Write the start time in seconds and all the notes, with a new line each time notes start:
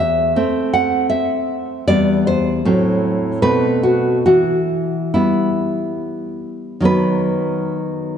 Already playing: E2 E5
0.36 A3 C4
0.73 F#5
1.10 E5
1.88 E2 G3 B3 D5
2.27 C5
2.65 A2 F#3 C4
3.42 B2 A3 C4 B4
3.83 F#4
4.26 E3 F#4
5.14 G3 B3 E4
6.80 D#3 F#3 B3
6.85 B4